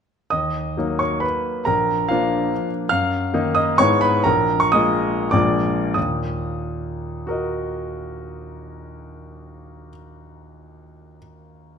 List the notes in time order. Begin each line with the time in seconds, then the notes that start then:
0.30 D#2 D#5 D#6
0.77 F#3 A#3 D#4
0.99 C#5 C#6
1.20 B4 B5
1.65 A#1 A#4 A#5
2.08 F3 A#3 D4 F4 F5
2.89 F#2 F5 F6
3.34 D#3 A#3 D#4
3.55 D#5 D#6
3.78 G#2 G#3 B3 E4 C#5 C#6
4.01 B4 B5
4.24 A#1 A#4 A#5
4.60 C#6
4.72 G#3 A#3 F4 D#5 D#6
5.31 A#1 G#3 A#3 F4 D5 D6
5.94 D#2 A#2 D#6
7.27 F#4 A#4
7.31 D#5